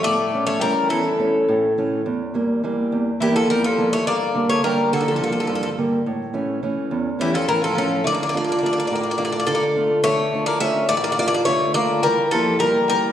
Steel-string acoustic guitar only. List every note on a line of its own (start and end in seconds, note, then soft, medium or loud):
0.04 0.60 A2 medium
0.34 0.60 E3 soft
0.34 0.61 A3 soft
0.34 0.61 C#4 medium
0.62 1.08 E3 soft
0.62 1.08 A3 soft
0.62 1.08 C#4 soft
0.91 1.47 E2 medium
1.19 1.65 E3 soft
1.19 1.65 A3 soft
1.19 1.66 C#4 soft
1.48 2.04 A2 medium
1.78 2.00 E3 soft
1.78 2.01 A3 soft
1.78 2.01 C#4 soft
2.06 2.61 E2 medium
2.34 2.62 E3 soft
2.34 2.63 G3 soft
2.34 2.63 A#3 soft
2.63 3.09 E3 soft
2.63 3.09 G3 soft
2.63 3.10 A#3 soft
2.92 3.47 E2 medium
3.20 3.66 E3 soft
3.20 3.66 G3 soft
3.20 3.66 A#3 medium
3.50 4.05 E2 medium
3.78 4.01 E3 soft
3.78 4.01 G3 soft
3.78 4.01 A#3 soft
4.06 4.62 G2 medium
4.34 4.62 D3 soft
4.34 4.63 G3 soft
4.34 4.63 A#3 medium
4.63 4.91 D3 soft
4.63 5.09 G3 soft
4.63 5.10 A#3 medium
4.93 5.19 D3 medium
5.20 5.66 D3 soft
5.20 5.66 G3 soft
5.20 5.67 A#3 medium
5.49 6.04 G2 medium
5.78 6.01 D3 soft
5.78 6.00 G3 soft
5.78 6.01 A#3 medium
6.06 6.62 A2 medium
6.34 6.62 E3 soft
6.34 6.62 A3 soft
6.34 6.62 C#4 medium
6.63 7.09 E3 soft
6.63 7.09 A3 soft
6.63 7.09 C#4 soft
6.91 7.47 E2 medium
7.19 7.65 E3 soft
7.19 7.65 A3 soft
7.19 7.66 C#4 medium
7.48 8.04 A2 medium
7.77 8.00 E3 soft
7.77 8.00 A3 soft
7.77 8.00 C#4 medium
8.05 8.61 D3 medium
8.34 8.62 A3 soft
8.34 8.63 D4 soft
8.34 8.63 F4 medium
8.63 9.09 A3 soft
8.63 9.09 D4 soft
8.63 9.09 F4 soft
8.90 9.46 A2 medium
9.18 9.65 A3 soft
9.18 9.65 D4 soft
9.18 9.65 F4 soft
9.47 10.03 D3 medium
9.76 9.99 A3 soft
9.76 9.99 D4 soft
9.76 10.00 F4 medium
10.05 10.61 D3 medium
10.33 10.60 A3 soft
10.33 10.60 D4 soft
10.33 10.60 F4 medium
10.61 11.07 A3 soft
10.61 11.07 D4 soft
10.61 11.08 F4 soft
10.89 11.46 A2 medium
11.18 11.65 A3 soft
11.18 11.65 D4 soft
11.18 11.65 F4 medium
11.47 12.03 D3 medium
11.76 11.99 A3 medium
11.76 11.99 D4 soft
11.76 12.00 F4 medium
12.06 12.61 E3 medium
12.34 12.60 A#3 soft
12.34 12.61 E4 soft
12.34 12.61 G4 medium
12.61 13.07 A#3 soft
12.61 13.08 E4 soft
12.61 13.08 G4 soft
12.90 13.12 E3 medium